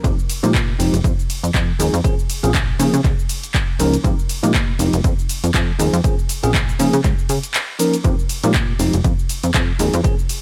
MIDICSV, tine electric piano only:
0, 0, Header, 1, 2, 480
1, 0, Start_track
1, 0, Key_signature, -4, "minor"
1, 0, Tempo, 500000
1, 42, Time_signature, 4, 2, 24, 8
1, 10001, End_track
2, 0, Start_track
2, 0, Title_t, "Tine electric piano"
2, 0, Program_c, 0, 4
2, 35, Note_on_c, 0, 53, 89
2, 36, Note_on_c, 0, 56, 84
2, 40, Note_on_c, 0, 60, 84
2, 40, Note_on_c, 0, 63, 85
2, 42, Note_on_c, 0, 67, 102
2, 129, Note_off_c, 0, 53, 0
2, 129, Note_off_c, 0, 56, 0
2, 131, Note_off_c, 0, 60, 0
2, 131, Note_off_c, 0, 63, 0
2, 132, Note_off_c, 0, 67, 0
2, 413, Note_on_c, 0, 53, 89
2, 414, Note_on_c, 0, 56, 81
2, 415, Note_on_c, 0, 60, 82
2, 417, Note_on_c, 0, 63, 79
2, 420, Note_on_c, 0, 67, 100
2, 485, Note_off_c, 0, 53, 0
2, 486, Note_off_c, 0, 56, 0
2, 486, Note_off_c, 0, 60, 0
2, 487, Note_off_c, 0, 63, 0
2, 489, Note_off_c, 0, 67, 0
2, 756, Note_on_c, 0, 53, 78
2, 757, Note_on_c, 0, 56, 70
2, 759, Note_on_c, 0, 60, 72
2, 759, Note_on_c, 0, 63, 74
2, 763, Note_on_c, 0, 67, 87
2, 901, Note_off_c, 0, 53, 0
2, 902, Note_off_c, 0, 56, 0
2, 903, Note_off_c, 0, 60, 0
2, 903, Note_off_c, 0, 63, 0
2, 905, Note_off_c, 0, 67, 0
2, 1718, Note_on_c, 0, 53, 80
2, 1721, Note_on_c, 0, 56, 73
2, 1723, Note_on_c, 0, 60, 71
2, 1724, Note_on_c, 0, 63, 72
2, 1727, Note_on_c, 0, 68, 88
2, 1862, Note_off_c, 0, 53, 0
2, 1864, Note_off_c, 0, 56, 0
2, 1864, Note_off_c, 0, 60, 0
2, 1865, Note_off_c, 0, 63, 0
2, 1867, Note_off_c, 0, 68, 0
2, 1958, Note_on_c, 0, 53, 92
2, 1960, Note_on_c, 0, 58, 85
2, 1963, Note_on_c, 0, 60, 85
2, 1964, Note_on_c, 0, 61, 85
2, 1965, Note_on_c, 0, 68, 105
2, 2050, Note_off_c, 0, 53, 0
2, 2051, Note_off_c, 0, 58, 0
2, 2053, Note_off_c, 0, 60, 0
2, 2053, Note_off_c, 0, 61, 0
2, 2054, Note_off_c, 0, 68, 0
2, 2332, Note_on_c, 0, 53, 92
2, 2335, Note_on_c, 0, 58, 84
2, 2336, Note_on_c, 0, 60, 83
2, 2338, Note_on_c, 0, 61, 81
2, 2341, Note_on_c, 0, 68, 99
2, 2405, Note_off_c, 0, 53, 0
2, 2406, Note_off_c, 0, 58, 0
2, 2407, Note_off_c, 0, 60, 0
2, 2408, Note_off_c, 0, 61, 0
2, 2409, Note_off_c, 0, 68, 0
2, 2681, Note_on_c, 0, 53, 81
2, 2682, Note_on_c, 0, 58, 73
2, 2685, Note_on_c, 0, 61, 74
2, 2687, Note_on_c, 0, 63, 72
2, 2688, Note_on_c, 0, 68, 89
2, 2823, Note_off_c, 0, 53, 0
2, 2824, Note_off_c, 0, 58, 0
2, 2825, Note_off_c, 0, 61, 0
2, 2827, Note_off_c, 0, 63, 0
2, 2827, Note_off_c, 0, 68, 0
2, 3640, Note_on_c, 0, 53, 80
2, 3643, Note_on_c, 0, 58, 73
2, 3646, Note_on_c, 0, 61, 73
2, 3647, Note_on_c, 0, 63, 74
2, 3649, Note_on_c, 0, 70, 87
2, 3783, Note_off_c, 0, 53, 0
2, 3785, Note_off_c, 0, 58, 0
2, 3786, Note_off_c, 0, 61, 0
2, 3787, Note_off_c, 0, 63, 0
2, 3788, Note_off_c, 0, 70, 0
2, 3878, Note_on_c, 0, 53, 93
2, 3880, Note_on_c, 0, 56, 85
2, 3882, Note_on_c, 0, 60, 84
2, 3884, Note_on_c, 0, 63, 87
2, 3886, Note_on_c, 0, 67, 101
2, 3970, Note_off_c, 0, 53, 0
2, 3971, Note_off_c, 0, 56, 0
2, 3972, Note_off_c, 0, 60, 0
2, 3973, Note_off_c, 0, 63, 0
2, 3974, Note_off_c, 0, 67, 0
2, 4250, Note_on_c, 0, 53, 91
2, 4253, Note_on_c, 0, 56, 83
2, 4256, Note_on_c, 0, 60, 84
2, 4256, Note_on_c, 0, 63, 83
2, 4258, Note_on_c, 0, 67, 101
2, 4324, Note_off_c, 0, 53, 0
2, 4325, Note_off_c, 0, 56, 0
2, 4327, Note_off_c, 0, 60, 0
2, 4327, Note_off_c, 0, 63, 0
2, 4328, Note_off_c, 0, 67, 0
2, 4598, Note_on_c, 0, 53, 82
2, 4599, Note_on_c, 0, 56, 74
2, 4601, Note_on_c, 0, 60, 72
2, 4603, Note_on_c, 0, 63, 75
2, 4605, Note_on_c, 0, 67, 88
2, 4742, Note_off_c, 0, 53, 0
2, 4743, Note_off_c, 0, 56, 0
2, 4744, Note_off_c, 0, 60, 0
2, 4744, Note_off_c, 0, 63, 0
2, 4745, Note_off_c, 0, 67, 0
2, 5557, Note_on_c, 0, 53, 80
2, 5557, Note_on_c, 0, 56, 74
2, 5561, Note_on_c, 0, 60, 74
2, 5563, Note_on_c, 0, 63, 75
2, 5565, Note_on_c, 0, 68, 89
2, 5702, Note_off_c, 0, 53, 0
2, 5702, Note_off_c, 0, 56, 0
2, 5703, Note_off_c, 0, 60, 0
2, 5705, Note_off_c, 0, 63, 0
2, 5705, Note_off_c, 0, 68, 0
2, 5798, Note_on_c, 0, 53, 92
2, 5799, Note_on_c, 0, 58, 84
2, 5801, Note_on_c, 0, 60, 85
2, 5803, Note_on_c, 0, 61, 83
2, 5805, Note_on_c, 0, 68, 101
2, 5890, Note_off_c, 0, 53, 0
2, 5891, Note_off_c, 0, 58, 0
2, 5892, Note_off_c, 0, 60, 0
2, 5893, Note_off_c, 0, 61, 0
2, 5894, Note_off_c, 0, 68, 0
2, 6172, Note_on_c, 0, 53, 90
2, 6175, Note_on_c, 0, 58, 81
2, 6177, Note_on_c, 0, 60, 85
2, 6178, Note_on_c, 0, 61, 82
2, 6179, Note_on_c, 0, 68, 99
2, 6245, Note_off_c, 0, 53, 0
2, 6246, Note_off_c, 0, 58, 0
2, 6247, Note_off_c, 0, 60, 0
2, 6248, Note_off_c, 0, 61, 0
2, 6249, Note_off_c, 0, 68, 0
2, 6519, Note_on_c, 0, 53, 79
2, 6521, Note_on_c, 0, 58, 73
2, 6523, Note_on_c, 0, 61, 72
2, 6526, Note_on_c, 0, 63, 72
2, 6528, Note_on_c, 0, 68, 88
2, 6662, Note_off_c, 0, 53, 0
2, 6664, Note_off_c, 0, 58, 0
2, 6665, Note_off_c, 0, 61, 0
2, 6666, Note_off_c, 0, 63, 0
2, 6667, Note_off_c, 0, 68, 0
2, 7479, Note_on_c, 0, 53, 76
2, 7481, Note_on_c, 0, 58, 73
2, 7484, Note_on_c, 0, 61, 73
2, 7486, Note_on_c, 0, 63, 69
2, 7487, Note_on_c, 0, 70, 86
2, 7623, Note_off_c, 0, 53, 0
2, 7624, Note_off_c, 0, 58, 0
2, 7625, Note_off_c, 0, 61, 0
2, 7626, Note_off_c, 0, 63, 0
2, 7627, Note_off_c, 0, 70, 0
2, 7719, Note_on_c, 0, 53, 91
2, 7721, Note_on_c, 0, 56, 86
2, 7724, Note_on_c, 0, 60, 84
2, 7727, Note_on_c, 0, 63, 83
2, 7729, Note_on_c, 0, 67, 100
2, 7811, Note_off_c, 0, 53, 0
2, 7812, Note_off_c, 0, 56, 0
2, 7813, Note_off_c, 0, 60, 0
2, 7814, Note_off_c, 0, 63, 0
2, 7815, Note_off_c, 0, 67, 0
2, 8096, Note_on_c, 0, 53, 92
2, 8097, Note_on_c, 0, 56, 82
2, 8098, Note_on_c, 0, 60, 83
2, 8101, Note_on_c, 0, 63, 82
2, 8104, Note_on_c, 0, 67, 100
2, 8167, Note_off_c, 0, 53, 0
2, 8167, Note_off_c, 0, 56, 0
2, 8168, Note_off_c, 0, 60, 0
2, 8170, Note_off_c, 0, 63, 0
2, 8171, Note_off_c, 0, 67, 0
2, 8438, Note_on_c, 0, 53, 81
2, 8439, Note_on_c, 0, 56, 71
2, 8442, Note_on_c, 0, 60, 73
2, 8444, Note_on_c, 0, 63, 73
2, 8445, Note_on_c, 0, 67, 88
2, 8582, Note_off_c, 0, 53, 0
2, 8583, Note_off_c, 0, 56, 0
2, 8584, Note_off_c, 0, 60, 0
2, 8585, Note_off_c, 0, 63, 0
2, 8586, Note_off_c, 0, 67, 0
2, 9399, Note_on_c, 0, 53, 78
2, 9401, Note_on_c, 0, 56, 72
2, 9404, Note_on_c, 0, 60, 72
2, 9405, Note_on_c, 0, 63, 73
2, 9408, Note_on_c, 0, 68, 86
2, 9543, Note_off_c, 0, 53, 0
2, 9544, Note_off_c, 0, 56, 0
2, 9545, Note_off_c, 0, 60, 0
2, 9545, Note_off_c, 0, 63, 0
2, 9547, Note_off_c, 0, 68, 0
2, 9635, Note_on_c, 0, 53, 93
2, 9638, Note_on_c, 0, 58, 84
2, 9639, Note_on_c, 0, 60, 84
2, 9640, Note_on_c, 0, 61, 83
2, 9642, Note_on_c, 0, 68, 103
2, 9729, Note_off_c, 0, 53, 0
2, 9730, Note_off_c, 0, 58, 0
2, 9731, Note_off_c, 0, 60, 0
2, 9731, Note_off_c, 0, 61, 0
2, 9732, Note_off_c, 0, 68, 0
2, 10001, End_track
0, 0, End_of_file